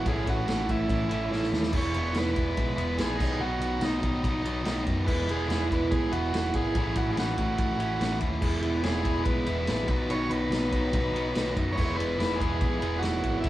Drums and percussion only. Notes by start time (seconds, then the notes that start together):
0.06 kick, ride
0.27 kick, ride
0.48 snare, ride
0.69 kick, ride
0.89 kick, ride
1.11 ride
1.33 snare
1.43 snare
1.53 snare
1.63 snare
1.73 kick, crash
1.94 ride
2.14 snare, ride
2.36 kick, ride
2.57 kick, ride
2.78 ride
2.98 snare, ride
3.20 kick, crash
3.61 ride
3.81 snare, ride
4.03 kick, ride
4.24 kick, ride
4.45 ride
4.65 snare, ride
4.86 kick, ride
5.08 kick, crash
5.29 ride
5.50 snare, ride
5.71 kick, ride
5.92 kick, ride
6.12 ride
6.34 snare, ride
6.54 kick, ride
6.75 kick, ride
6.95 kick, ride
7.17 snare, ride
7.38 kick, ride
7.58 kick, ride
7.80 ride
8.01 snare, ride
8.20 kick, ride
8.42 kick, crash
8.62 ride
8.83 snare, ride
9.05 kick, ride
9.25 kick, ride
9.46 ride
9.67 snare, ride
9.88 kick, ride
10.10 ride
10.31 ride
10.52 snare, ride
10.72 kick, ride
10.93 kick, ride
11.16 ride
11.35 snare, ride
11.57 kick, ride
11.78 kick, crash
12.00 ride
12.20 snare, ride
12.40 kick, ride
12.61 kick, ride
12.82 ride
13.02 snare, ride
13.23 kick, ride
13.44 kick, ride